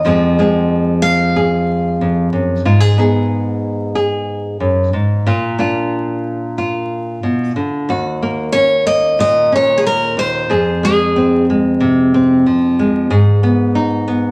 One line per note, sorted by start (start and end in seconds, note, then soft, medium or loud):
0.00 1.02 D#5 medium
0.05 1.99 F2 medium
0.05 2.61 F3 soft
0.05 0.38 G#3 soft
0.05 0.37 C4 soft
0.05 0.39 G#4 soft
0.39 2.97 G#3 soft
0.39 2.66 C4 soft
0.39 1.36 G#4 soft
1.02 2.28 F5 medium
1.36 2.61 G#4 medium
2.01 2.32 F2 soft
2.33 2.65 F#2 soft
2.65 4.60 G#2 medium
2.65 2.80 F4 medium
2.80 2.97 G#4 medium
2.98 5.22 B3 soft
2.98 5.22 D#4 soft
2.98 3.94 G#4 soft
3.95 5.22 G#4 medium
4.60 4.93 F#2 soft
4.93 5.25 G#2 medium
5.26 7.22 A#2 medium
5.26 5.59 F4 medium
5.58 7.83 A#3 soft
5.58 7.83 D4 soft
5.58 6.57 F4 soft
6.58 7.88 F4 medium
7.23 7.55 B2 soft
7.56 7.88 D3 soft
7.89 10.16 D#2 medium
7.89 10.46 F#4 medium
8.22 8.85 A#3 soft
8.52 9.51 C#4 soft
8.52 8.86 C#5 medium
8.86 10.45 A#3 soft
8.86 9.19 D#5 medium
9.19 10.49 A#2 medium
9.19 9.52 D#5 medium
9.52 10.45 C#4 soft
9.52 9.79 C#5 medium
9.78 9.84 G#4 soft
9.86 10.15 A#4 medium
10.17 10.49 D#2 medium
10.17 10.84 C5 medium
10.50 13.06 F2 medium
10.50 13.07 G#4 medium
10.83 11.49 G#3 soft
10.83 11.44 G#4 medium
11.16 12.13 C4 soft
11.50 12.78 G#3 soft
11.80 12.45 C3 medium
12.14 13.11 C4 medium
12.46 13.07 F3 medium
12.79 13.43 G#3 soft
13.10 14.31 G#2 medium
13.10 14.31 G#4 medium
13.43 14.06 B3 soft
13.75 14.31 D#4 medium
14.08 14.31 B3 medium